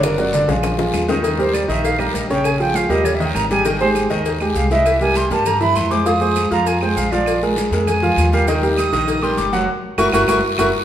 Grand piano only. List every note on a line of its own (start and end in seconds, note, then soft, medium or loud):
0.00 0.13 D3 loud
0.00 0.13 D4 loud
0.00 0.13 D5 medium
0.18 0.31 F#3 medium
0.18 0.31 F#4 medium
0.18 0.31 A#4 medium
0.34 0.46 D3 medium
0.34 0.46 D4 medium
0.34 0.46 D5 medium
0.48 0.73 F3 medium
0.48 0.73 F4 medium
0.48 0.73 G#4 medium
0.78 1.03 F3 medium
0.78 1.03 F4 medium
0.78 1.03 G#4 medium
1.08 1.21 D#3 loud
1.08 1.21 D#4 loud
1.08 1.22 D#5 medium
1.23 1.36 D#3 medium
1.23 1.36 D#4 medium
1.23 1.36 D#5 medium
1.38 1.63 G3 medium
1.38 1.64 G4 medium
1.38 1.64 A#4 medium
1.68 1.93 D#3 medium
1.68 1.94 D#4 medium
1.68 1.94 D#5 medium
1.99 2.24 G3 medium
1.99 2.24 G4 medium
1.99 2.24 A#4 medium
2.30 2.54 C#3 medium
2.30 2.55 C#4 medium
2.30 2.55 C#5 medium
2.60 2.84 F3 medium
2.60 2.85 F4 medium
2.60 2.85 G#4 medium
2.90 3.14 G3 medium
2.90 3.15 G4 medium
2.90 3.15 A#4 medium
3.20 3.45 D#3 medium
3.20 3.45 D#4 medium
3.20 3.45 D#5 medium
3.51 3.63 G3 medium
3.51 3.63 G4 medium
3.51 3.63 G#4 medium
3.65 3.78 D#3 medium
3.65 3.78 D#4 medium
3.65 3.78 D#5 medium
3.81 4.05 G#3 medium
3.81 4.06 G4 medium
3.81 4.06 G#4 medium
4.10 4.35 D#3 medium
4.10 4.35 D#4 medium
4.10 4.35 D#5 medium
4.41 4.65 G#3 medium
4.41 4.66 G4 medium
4.41 4.66 G#4 medium
4.71 4.96 E3 loud
4.71 4.96 E4 medium
4.71 4.96 E5 medium
5.01 5.26 G3 medium
5.01 5.26 G4 medium
5.01 5.26 A#4 medium
5.31 5.56 G3 medium
5.31 5.56 G4 medium
5.31 5.56 A#4 medium
5.61 5.86 E3 medium
5.61 5.86 E4 medium
5.61 5.86 E5 medium
5.90 6.03 G#3 medium
5.90 6.03 G#4 medium
5.90 6.04 C5 medium
6.05 6.18 F3 medium
6.05 6.19 F4 medium
6.05 6.19 F5 medium
6.21 6.46 G#3 medium
6.21 6.46 G#4 medium
6.21 6.46 C5 medium
6.51 6.76 F3 loud
6.51 6.76 F4 medium
6.51 6.77 F5 medium
6.82 7.07 G#3 medium
6.82 7.07 G#4 medium
6.82 7.07 C5 medium
7.12 7.37 F3 loud
7.12 7.37 F4 medium
7.12 7.37 F5 medium
7.43 7.67 G#3 medium
7.43 7.68 G#4 medium
7.43 7.67 A#4 medium
7.73 7.97 G#3 medium
7.73 7.98 G#4 medium
7.73 7.98 A#4 medium
8.02 8.27 F3 medium
8.02 8.28 F4 medium
8.02 8.28 F5 medium
8.33 8.46 G3 medium
8.33 8.46 G4 medium
8.33 8.46 A#4 medium
8.48 8.60 D#3 medium
8.48 8.60 D#4 medium
8.48 8.61 D#5 medium
8.63 8.88 G3 medium
8.63 8.88 G4 medium
8.63 8.88 A#4 medium
8.93 9.17 D#3 medium
8.93 9.18 D#4 medium
8.93 9.18 D#5 medium
9.23 9.48 G3 medium
9.23 9.48 G4 medium
9.23 9.48 A#4 medium
9.53 9.65 F#3 loud
9.53 9.65 F#4 medium
9.53 9.66 F#5 loud
9.98 10.08 E4 loud
9.98 10.08 F#4 loud
9.98 10.08 A#4 loud
10.13 10.23 E4 loud
10.13 10.23 F#4 loud
10.13 10.23 A#4 loud
10.28 10.38 E4 loud
10.28 10.38 F#4 loud
10.28 10.38 A#4 loud
10.59 10.68 E4 loud
10.59 10.68 F#4 loud
10.59 10.69 A#4 loud